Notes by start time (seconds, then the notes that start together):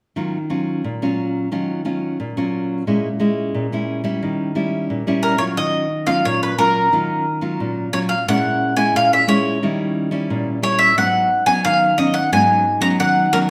0.16 D#3 F#3 C#4 F4
0.50 F#3 C#4 F4
0.84 A#2
1.02 F#3 C#4 F4
1.52 D#3 F#3 C#4 F4
1.85 F#3 C#4 F4
2.20 A#2
2.37 F#3 C#4 F4
2.87 A#2 G#3 C#4 E4
3.20 G#3 C#4 E4
3.54 A#2
3.72 G#3 C#4 E4
4.04 G3 C#4 E4
4.22 D#3
4.55 G3 C#4 E4
4.90 A#2
5.07 G3 C#4 E4
5.23 A#4
5.38 F#3 C#4 F4 C#5
5.57 D#3 D#5
6.07 F#3 C#4 F4 F5
6.25 A#2 C#5
6.43 B4
6.58 F#3 C#4 F4 A#4
6.92 D#3 F#3 C#4 F4
7.41 F#3 C#4 F4
7.60 A#2
7.93 F#3 C#4 F4 C#5
8.09 F5
8.28 A#2 G#3 C#4 E4 F#5
8.76 G#3 C#4 E4 G#5
8.95 A#2 F5
9.13 E5
9.28 G#3 C#4 E4 C#5
9.63 D#3 G3 C#4 E4
10.11 G3 C#4 E4
10.30 A#2
10.62 G3 C#4 E4 C#5
10.79 E5
10.97 G#2 F#3 B3 C#4 F#5
11.46 F#3 B3 C#4 G#5
11.65 D#3 F5
11.98 F#3 B3 C#4 D#5
12.14 F#5
12.32 G#2 F#3 B3 C#4 G#5
12.81 F#3 B3 C#4 A#5
13.00 D#3 F#5
13.33 F#3 B3 C#4 A#4